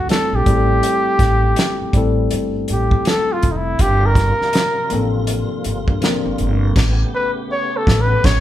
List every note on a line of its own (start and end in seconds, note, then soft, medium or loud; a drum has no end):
0.00 0.48 F#3 medium
0.00 0.11 C4 medium
0.00 0.48 D4 medium
0.00 0.11 E4 soft
0.00 0.12 A4 medium
0.09 0.38 G3 medium
0.09 0.38 A3 medium
0.09 0.38 C4 medium
0.09 0.39 E4 medium
0.09 0.37 A4 medium
0.09 0.39 A4 medium
0.09 snare loud
0.09 closed hi-hat medium
0.33 0.45 A#1 medium
0.33 2.20 G4 medium
0.46 0.78 A1 medium
0.46 1.66 G3 medium
0.46 1.67 A3 medium
0.46 1.67 C4 medium
0.46 1.68 E4 medium
0.46 0.56 G#4 medium
0.46 kick loud
0.46 closed hi-hat medium
0.56 1.72 A4 medium
0.83 closed hi-hat medium
1.19 1.52 A1 medium
1.19 kick medium
1.19 snare soft
1.19 closed hi-hat medium
1.56 snare loud
1.56 closed hi-hat medium
1.81 muted upright bass stroke soft
1.93 2.26 A1 medium
1.93 3.00 G3 medium
1.93 3.00 A3 medium
1.93 3.01 C4 medium
1.93 3.01 E4 medium
1.93 kick medium
1.93 closed hi-hat medium
1.97 3.01 A4 medium
2.31 2.64 G1 medium
2.31 closed hi-hat medium
2.68 2.89 A1 medium
2.68 3.09 G4 medium
2.68 closed hi-hat medium
2.91 kick medium
3.05 3.34 A4 medium
3.05 snare loud
3.05 closed hi-hat medium
3.32 3.53 F4 medium
3.42 3.75 F1 medium
3.42 kick medium
3.42 closed hi-hat medium
3.52 3.58 D#4 medium
3.57 3.83 E4 medium
3.79 4.31 G1 loud
3.79 6.73 C3 medium
3.79 6.73 G3 medium
3.79 6.73 A#3 medium
3.79 6.73 F4 medium
3.79 4.07 G4 medium
3.79 kick loud
3.79 closed hi-hat medium
4.06 5.16 A#4 loud
4.15 kick medium
4.15 snare soft
4.15 closed hi-hat medium
4.40 muted upright bass stroke soft
4.40 snare soft
4.53 snare loud
4.53 closed hi-hat medium
4.90 5.42 A1 medium
4.90 5.45 F3 medium
4.90 5.46 A#3 medium
4.90 5.46 C4 medium
4.90 5.47 D4 medium
4.90 5.47 A4 medium
4.90 closed hi-hat medium
5.27 closed hi-hat medium
5.64 5.85 G1 medium
5.64 closed hi-hat medium
5.88 6.00 G2 medium
5.88 kick medium
6.01 6.30 F3 medium
6.01 6.30 A#3 medium
6.01 6.31 C4 medium
6.01 6.31 D4 medium
6.01 6.32 A#4 medium
6.01 snare medium
6.01 closed hi-hat medium
6.25 6.37 G1 medium
6.38 6.71 G1 medium
6.38 closed hi-hat medium
6.76 7.03 A1 loud
6.76 8.40 C#3 medium
6.76 8.40 A3 medium
6.76 8.40 B3 medium
6.76 8.40 G4 medium
6.76 kick loud
6.76 snare loud
6.76 crash medium
7.15 7.31 B4 medium
7.52 7.78 C#5 medium
7.77 8.03 A4 medium
7.87 8.14 A1 loud
7.87 kick loud
7.87 snare loud
8.01 8.27 B4 medium
8.24 8.40 A1 medium
8.24 8.40 C#5 loud
8.24 kick loud
8.24 snare loud
8.24 crash medium